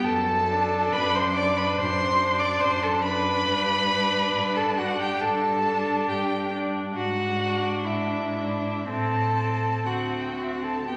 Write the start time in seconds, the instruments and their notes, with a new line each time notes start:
0.05 cello F#2, violin A4 A5
0.50 viola D4
0.93 cello F#2, violin B4 B5
1.15 violin C5 C6
1.34 viola D4, violin D5 D6
1.57 violin B4 B5
1.77 cello F#2, violin C5 C6
2.20 viola D4
2.39 violin D5 D6
2.60 cello F#2, violin C5 C6
2.83 violin A4 A5
3.03 viola D4, violin B4 B5
3.47 cello G2, viola D4
3.90 viola D4
4.35 cello G2
4.56 violin A4 A5
4.78 viola D4, violin F#4 F#5
5.00 violin G4 G5
5.21 cello G2, violin A4 A5
5.67 viola D4
6.08 cello G2, violin G4 G5
6.53 viola D4
6.96 cello G#2, violin F#4 F#5
7.41 viola D4
7.85 cello G#2, violin E4 E5
8.36 viola D4
8.87 cello A2, viola C4, violin A4 A5
9.36 viola C4
9.85 cello D2, viola C4, violin F#4 F#5
10.21 violin G5
10.32 violin F#5
10.36 viola C4
10.43 violin E5
10.52 violin F#5
10.62 violin A4 A5
10.89 cello G2, viola B3, violin G4 G5